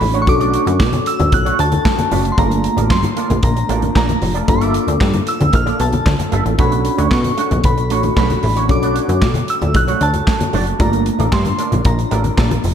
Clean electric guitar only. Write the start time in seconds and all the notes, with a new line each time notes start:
0.01 muted clean electric guitar stroke
0.14 A3 D4 F#4 C#5
0.27 muted clean electric guitar stroke
0.40 A3 D4 F#4 D5
0.53 A3 D4 F#4 C#5
0.66 muted clean electric guitar stroke
0.80 muted clean electric guitar stroke
0.93 muted clean electric guitar stroke
1.19 muted clean electric guitar stroke
1.32 muted clean electric guitar stroke
1.45 A3 D4 F#4 C#5
1.58 muted clean electric guitar stroke
1.71 muted clean electric guitar stroke
1.85 muted clean electric guitar stroke
1.98 muted clean electric guitar stroke
2.11 A3 D4 F#4 D5
2.24 muted clean electric guitar stroke
2.37 A#3 F4 A4 D5
2.50 muted clean electric guitar stroke
2.64 muted clean electric guitar stroke
2.77 A#3 F4 A4 D5
3.03 muted clean electric guitar stroke
3.16 A#3 F4 A4 D5
3.30 muted clean electric guitar stroke
3.43 muted clean electric guitar stroke
3.56 muted clean electric guitar stroke
3.69 A#3 F4 A4 D5
3.82 muted clean electric guitar stroke
3.95 A#3 F4 A4 D5
4.09 muted clean electric guitar stroke
4.21 muted clean electric guitar stroke
4.34 A#3 F4 A4 D5
4.48 muted clean electric guitar stroke
4.61 A#3 F4 A4 E5
4.74 A#3 F4 A4 D5
4.87 muted clean electric guitar stroke
5.00 muted clean electric guitar stroke
5.13 muted clean electric guitar stroke
5.40 muted clean electric guitar stroke
5.53 muted clean electric guitar stroke
5.66 A#3 F4 A4 D5
5.79 muted clean electric guitar stroke
5.92 muted clean electric guitar stroke
6.06 muted clean electric guitar stroke
6.19 muted clean electric guitar stroke
6.32 A#3 F4 A4 E5
6.45 muted clean electric guitar stroke
6.58 A3 D4 F#4 C#5
6.72 muted clean electric guitar stroke
6.85 muted clean electric guitar stroke
6.98 A3 D4 F#4 C#5
7.25 muted clean electric guitar stroke
7.37 A3 D4 F#4 C#5
7.51 muted clean electric guitar stroke
7.64 muted clean electric guitar stroke
7.77 muted clean electric guitar stroke
7.90 A3 D4 F#4 C#5
8.04 muted clean electric guitar stroke
8.17 A3 D4 F#4 C#5
8.30 muted clean electric guitar stroke
8.43 muted clean electric guitar stroke
8.56 A3 D4 F#4 C#5
8.70 muted clean electric guitar stroke
8.82 A3 D4 F#4 D5
8.96 A3 D4 F#4 C#5
9.09 muted clean electric guitar stroke
9.22 muted clean electric guitar stroke
9.35 muted clean electric guitar stroke
9.61 muted clean electric guitar stroke
9.75 muted clean electric guitar stroke
9.88 A3 D4 F#4 C#5
10.01 muted clean electric guitar stroke
10.14 muted clean electric guitar stroke
10.27 muted clean electric guitar stroke
10.41 muted clean electric guitar stroke
10.53 A3 D4 F#4 D5
10.66 muted clean electric guitar stroke
10.80 A#3 F4 A4 D5
10.93 muted clean electric guitar stroke
11.06 muted clean electric guitar stroke
11.19 A#3 F4 A4 D5
11.45 muted clean electric guitar stroke
11.58 A#3 F4 A4 D5
11.72 muted clean electric guitar stroke
11.85 muted clean electric guitar stroke
11.98 muted clean electric guitar stroke
12.11 A#3 F4 A4 D5
12.24 muted clean electric guitar stroke
12.37 A#3 F4 A4 D5
12.50 muted clean electric guitar stroke
12.64 muted clean electric guitar stroke